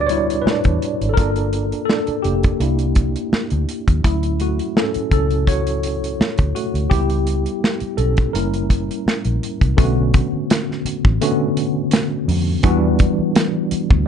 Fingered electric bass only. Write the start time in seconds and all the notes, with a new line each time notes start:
Already playing: D2
0.46 muted fingered electric bass stroke
0.65 E2
1.01 G#1
1.18 G1
2.08 muted fingered electric bass stroke
2.25 F1
2.60 C2
3.32 muted fingered electric bass stroke
3.52 D2
3.88 D#2
4.04 D2
4.96 muted fingered electric bass stroke
5.11 C#2
6.20 muted fingered electric bass stroke
6.39 D2
6.74 D2
6.91 C#2
7.81 muted fingered electric bass stroke
7.98 B1
8.34 F#1
9.06 muted fingered electric bass stroke
9.25 A#1
9.61 C2
9.78 B1
10.33 muted fingered electric bass stroke
10.85 muted fingered electric bass stroke
11.05 A1
12.28 F2
12.64 E2
13.19 muted fingered electric bass stroke
13.72 muted fingered electric bass stroke
13.91 D2